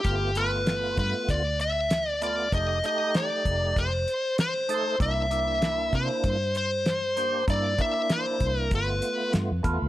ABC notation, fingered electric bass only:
X:1
M:4/4
L:1/16
Q:"Swing 16ths" 1/4=97
K:Gdor
V:1 name="Fingered electric bass" clef=bass
G,,,6 G,, z D,,8 | F,,,2 z4 F,,,2 F,,,2 z6 | C,,6 C, z G,,8 | G,,2 z4 C,,2 G,,,2 z2 G,, F,, E,, D,, |]